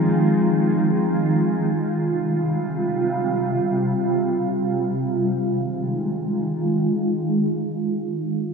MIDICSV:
0, 0, Header, 1, 3, 480
1, 0, Start_track
1, 0, Key_signature, -4, "minor"
1, 0, Tempo, 500000
1, 8195, End_track
2, 0, Start_track
2, 0, Title_t, "Tine electric piano"
2, 0, Program_c, 0, 4
2, 0, Control_c, 0, 64, 127
2, 0, Note_on_c, 0, 53, 65
2, 0, Note_on_c, 0, 60, 62
2, 0, Note_on_c, 0, 63, 56
2, 0, Note_on_c, 0, 68, 77
2, 42, Control_c, 0, 64, 0
2, 1631, Note_off_c, 0, 53, 0
2, 1635, Note_off_c, 0, 60, 0
2, 1639, Note_off_c, 0, 63, 0
2, 1642, Note_off_c, 0, 68, 0
2, 8195, End_track
3, 0, Start_track
3, 0, Title_t, "Ambient pad"
3, 0, Program_c, 1, 92
3, 0, Note_on_c, 1, 51, 76
3, 0, Note_on_c, 1, 56, 72
3, 0, Note_on_c, 1, 65, 89
3, 1639, Note_off_c, 1, 65, 0
3, 1644, Note_off_c, 1, 51, 0
3, 1644, Note_off_c, 1, 56, 0
3, 1676, Note_on_c, 1, 48, 80
3, 1676, Note_on_c, 1, 55, 70
3, 1676, Note_on_c, 1, 65, 87
3, 4935, Note_off_c, 1, 48, 0
3, 4935, Note_off_c, 1, 55, 0
3, 4935, Note_off_c, 1, 65, 0
3, 4967, Note_on_c, 1, 51, 80
3, 4967, Note_on_c, 1, 56, 72
3, 4967, Note_on_c, 1, 65, 89
3, 8195, Note_off_c, 1, 51, 0
3, 8195, Note_off_c, 1, 56, 0
3, 8195, Note_off_c, 1, 65, 0
3, 8195, End_track
0, 0, End_of_file